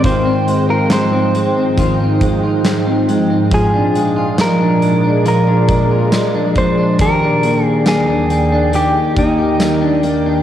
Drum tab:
HH |xxxxxxxx|xxxxxxxx|xxxxxxxx|
TB |--x---x-|--x---x-|--x---x-|
SD |--o---o-|--o---o-|--o---o-|
BD |o---oo--|o----o-o|o----o--|